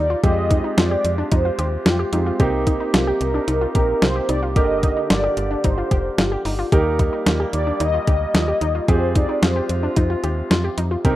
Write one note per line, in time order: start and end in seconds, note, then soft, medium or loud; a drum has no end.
0.00 0.15 D#2 loud
0.00 0.20 G3 medium
0.00 0.20 A#3 medium
0.00 0.21 A#3 medium
0.00 0.20 D#4 medium
0.00 0.21 D#4 medium
0.00 0.20 G4 medium
0.00 6.68 G4 medium
0.00 0.24 D5 loud
0.10 0.19 F4 medium
0.23 0.61 F2 loud
0.23 4.39 C3 medium
0.23 2.38 F3 medium
0.23 2.38 G#3 medium
0.23 2.09 G#3 medium
0.23 2.09 C4 medium
0.23 2.38 F4 medium
0.23 2.09 F4 medium
0.23 0.42 G4 loud
0.23 2.09 G4 medium
0.23 0.79 D#5 loud
0.23 kick loud
0.23 closed hi-hat medium
0.51 0.60 D#4 medium
0.51 kick medium
0.51 closed hi-hat medium
0.64 0.73 D#4 medium
0.77 0.97 F2 loud
0.77 0.87 F4 medium
0.77 1.33 D5 loud
0.77 snare loud
0.77 closed hi-hat medium
0.91 1.10 G4 medium
1.05 1.24 F2 loud
1.05 closed hi-hat medium
1.18 1.28 D4 medium
1.32 1.51 F2 loud
1.32 1.41 D#4 medium
1.32 1.87 C5 loud
1.32 kick medium
1.32 closed hi-hat medium
1.45 1.55 F4 medium
1.59 1.78 D#2 medium
1.59 1.77 G4 medium
1.59 closed hi-hat medium
1.86 2.05 F2 loud
1.86 1.95 F4 medium
1.86 2.23 G4 medium
1.86 snare loud
1.86 closed hi-hat medium
1.99 2.09 G4 medium
2.13 2.32 F2 loud
2.13 2.40 G#3 soft
2.13 2.38 C4 soft
2.13 2.22 D#4 medium
2.13 2.40 F4 soft
2.13 2.38 G4 medium
2.13 closed hi-hat medium
2.26 2.36 F4 medium
2.40 2.78 C2 loud
2.40 4.39 D#3 medium
2.40 6.68 A#3 medium
2.40 3.72 A#3 medium
2.40 3.72 C4 medium
2.40 4.39 D#4 medium
2.40 3.72 D#4 medium
2.40 2.59 G4 loud
2.40 3.72 G4 medium
2.40 kick loud
2.40 closed hi-hat medium
2.67 2.76 D#4 medium
2.67 kick medium
2.67 closed hi-hat medium
2.80 2.90 D#4 medium
2.94 3.13 C2 medium
2.94 3.03 F4 medium
2.94 snare loud
2.94 closed hi-hat medium
3.07 3.26 G4 medium
3.21 3.40 C2 medium
3.21 3.74 A#4 loud
3.21 closed hi-hat medium
3.34 3.44 D4 medium
3.48 3.67 C2 loud
3.48 3.57 D#4 medium
3.48 closed hi-hat medium
3.61 3.71 F4 medium
3.75 3.94 A#1 medium
3.75 4.55 A#3 soft
3.75 4.56 C4 soft
3.75 4.56 D#4 soft
3.75 3.94 G4 medium
3.75 4.55 G4 medium
3.75 4.03 A#4 loud
3.75 kick medium
3.75 closed hi-hat medium
4.02 4.21 C2 loud
4.02 4.11 F4 medium
4.02 4.30 C5 loud
4.02 snare loud
4.02 closed hi-hat medium
4.16 4.25 G4 medium
4.29 4.58 C2 loud
4.29 4.38 D#4 medium
4.29 4.41 D5 loud
4.29 closed hi-hat medium
4.43 4.52 F4 medium
4.56 4.94 G1 loud
4.56 6.70 D3 medium
4.56 6.68 D3 medium
4.56 6.68 A#3 medium
4.56 4.75 G4 loud
4.56 6.68 G4 medium
4.56 6.68 A#4 medium
4.56 5.12 D#5 loud
4.56 kick loud
4.56 closed hi-hat medium
4.83 4.92 D#4 medium
4.83 kick medium
4.83 closed hi-hat medium
4.97 5.06 D#4 medium
5.10 5.29 G1 loud
5.10 5.20 F4 medium
5.10 5.66 D5 loud
5.10 snare loud
5.10 closed hi-hat medium
5.24 5.42 G4 medium
5.37 5.56 G1 loud
5.37 closed hi-hat medium
5.51 5.60 D4 medium
5.64 5.83 G1 loud
5.64 5.74 D#4 medium
5.64 6.20 C5 loud
5.64 kick medium
5.64 closed hi-hat medium
5.78 5.87 F4 medium
5.91 6.10 F1 medium
5.91 6.10 G4 medium
5.91 kick medium
5.91 closed hi-hat medium
6.18 6.37 G1 loud
6.18 6.28 F4 medium
6.18 6.56 G4 medium
6.18 snare loud
6.18 closed hi-hat medium
6.32 6.41 G4 medium
6.45 6.64 G1 loud
6.45 6.55 D#4 medium
6.45 open hi-hat medium
6.59 6.68 F4 medium
6.72 7.10 D#2 loud
6.72 8.86 D#3 medium
6.72 8.86 G3 medium
6.72 8.86 A#3 medium
6.72 8.85 A#3 medium
6.72 8.85 D#4 medium
6.72 6.91 G4 loud
6.72 8.85 G4 medium
6.72 8.84 A#4 medium
6.72 kick loud
6.72 closed hi-hat medium
6.99 7.09 D#4 medium
6.99 kick medium
6.99 closed hi-hat medium
7.13 7.22 D#4 medium
7.26 7.45 D#2 loud
7.26 7.36 F4 medium
7.26 snare loud
7.26 closed hi-hat medium
7.40 7.59 G4 medium
7.53 7.72 D#2 loud
7.53 7.81 D5 loud
7.53 closed hi-hat medium
7.67 7.76 D4 medium
7.80 7.99 D#2 loud
7.80 7.90 D#4 medium
7.80 8.06 D#5 loud
7.80 closed hi-hat medium
7.94 8.03 F4 medium
8.07 8.26 D2 medium
8.07 8.26 G4 medium
8.07 8.91 D#5 loud
8.07 kick medium
8.07 closed hi-hat medium
8.34 8.53 D#2 loud
8.34 8.44 F4 medium
8.34 snare loud
8.34 closed hi-hat medium
8.48 8.57 G4 medium
8.61 8.80 D#2 medium
8.61 8.71 D#4 medium
8.61 closed hi-hat medium
8.75 8.84 F4 medium
8.88 9.26 F2 loud
8.88 11.16 C3 medium
8.88 10.88 F3 medium
8.88 10.88 G#3 medium
8.88 11.01 C4 medium
8.88 10.88 F4 medium
8.88 11.01 F4 medium
8.88 9.07 G4 loud
8.88 11.01 G4 medium
8.88 11.01 G#4 medium
8.88 9.16 C5 loud
8.88 kick loud
8.88 closed hi-hat medium
9.15 9.25 D#4 medium
9.15 9.43 D5 loud
9.15 kick medium
9.15 closed hi-hat medium
9.29 9.38 D#4 medium
9.42 9.61 F2 loud
9.42 9.52 F4 medium
9.42 10.74 C5 medium
9.42 snare loud
9.42 closed hi-hat medium
9.56 9.75 G4 medium
9.69 9.88 F2 loud
9.69 closed hi-hat medium
9.83 9.92 D4 medium
9.96 10.16 F2 loud
9.96 10.06 D#4 medium
9.96 kick medium
9.96 closed hi-hat medium
10.10 10.19 F4 medium
10.24 10.43 D#2 medium
10.24 10.42 G4 medium
10.24 closed hi-hat medium
10.51 10.70 F2 loud
10.51 10.60 F4 medium
10.51 snare loud
10.51 closed hi-hat medium
10.64 10.74 G4 medium
10.78 10.97 F2 loud
10.78 10.87 D#4 medium
10.78 closed hi-hat medium
10.91 11.01 F4 medium
11.05 11.16 C2 loud
11.05 11.16 D#3 medium
11.05 11.16 A#3 medium
11.05 11.16 C4 medium
11.05 11.16 D#4 medium
11.05 11.16 G4 loud
11.05 11.16 G4 medium
11.05 11.16 A#4 medium
11.05 kick loud
11.05 closed hi-hat medium